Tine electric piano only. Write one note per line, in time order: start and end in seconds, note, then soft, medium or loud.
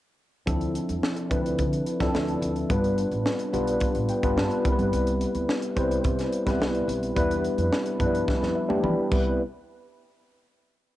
0.46 1.08 F3 medium
0.46 1.08 C4 medium
0.46 1.09 D4 medium
0.46 1.09 E4 medium
0.46 1.09 A4 medium
1.29 1.81 F3 medium
1.29 1.82 C4 medium
1.29 1.82 D4 medium
1.29 1.82 E4 medium
1.29 1.82 B4 medium
2.00 2.52 F3 medium
2.00 2.52 C4 medium
2.00 2.52 D4 medium
2.00 2.52 E4 medium
2.00 2.52 A4 loud
2.69 3.31 G3 medium
2.69 3.32 B3 medium
2.69 3.32 D4 medium
2.69 3.32 F4 medium
2.69 3.32 B4 medium
3.53 4.05 G3 medium
3.53 4.05 B3 medium
3.53 4.05 D4 medium
3.53 4.05 F4 medium
3.53 4.05 B4 medium
4.09 4.35 G5 medium
4.23 4.63 G3 medium
4.23 4.63 B3 medium
4.23 4.65 D4 medium
4.23 4.66 F4 medium
4.23 4.66 B4 medium
4.37 4.63 A5 medium
4.65 5.54 G3 medium
4.65 5.54 B3 medium
4.65 5.55 C4 medium
4.65 5.55 E4 medium
4.65 4.72 A#4 medium
4.65 4.91 B5 medium
4.72 5.58 B4 loud
5.76 6.28 G3 medium
5.76 6.28 C4 medium
5.76 6.28 E4 medium
5.76 6.28 B4 medium
5.76 6.28 C5 medium
6.46 6.98 G3 medium
6.46 6.98 B3 medium
6.46 6.98 C4 medium
6.46 6.98 E4 medium
6.46 6.99 B4 medium
7.15 7.78 G3 medium
7.15 7.78 B3 medium
7.15 7.78 D4 medium
7.15 7.78 E4 medium
7.15 7.78 B4 loud
7.99 8.06 F3 medium
7.99 8.51 B3 medium
7.99 8.51 D4 medium
7.99 8.51 E4 medium
7.99 8.52 B4 medium
8.06 8.54 G3 medium
8.55 8.69 E5 medium
8.68 9.10 G3 medium
8.68 9.10 B3 medium
8.68 9.11 D4 medium
8.68 9.10 E4 medium
8.68 9.11 G4 medium
8.68 8.82 G5 medium
8.84 9.10 B5 medium
9.11 9.38 G3 medium
9.11 9.38 B3 medium
9.11 9.38 C4 medium
9.11 9.38 E4 medium
9.11 9.38 B4 medium